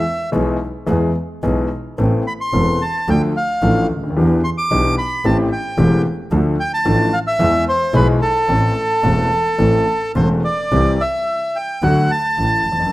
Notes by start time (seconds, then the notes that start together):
Already playing: E5
0.32 B1 B2 E3 G#3 B3 G#4
0.86 E2 E3 G#3 B3 G#4
1.43 B1 B2 E3 G#3 B3 G#4
1.98 A1 A2 E3 B3 C4 A4
2.27 B5
2.41 C6
2.53 E1 E2 E3 B3 C4 A4
2.82 A5
3.08 D2 D3 F3 A3 D4 A4 G5
3.37 F5
3.62 A1 A2 F3 A3 D4 A4
3.90 D2
3.96 C#2
4.03 D2
4.10 D#2
4.16 E2 E3 B3 D4 G4
4.44 C6
4.58 D6
4.71 B1 B2 E3 B3 D4 G4
4.98 B5
5.25 A1 A2 E3 A3 C4 G4 A5
5.53 G5
5.78 E1 E2 E3 A3 C4 G4
6.31 D2 D3 F3 A3 D4 A4
6.60 G5
6.74 A5
6.85 A1 A2 F3 A3 D4 A4
7.13 F5
7.27 E5
7.39 E2 E3 G#3 B3 G#4
7.69 C5
7.93 B1 B2 E3 G#3 B3 G#4 B4
8.22 A4
8.48 A1 A2 E3 A3 C4 A4
9.03 E1 E2 E3 A3 C4 A4
9.58 A1 A2 E3 A3 C4 A4
10.15 E1 E2 E3 A3 C4 A4 C5
10.44 D5
10.71 C2 C3 E3 G3 C4 G4
11.01 E5
11.56 G5
11.82 D2 D3 F#3 A3 F#4 F#5
12.11 A5
12.38 A1 A2
12.65 F1
12.72 E2
12.79 F2
12.86 F#2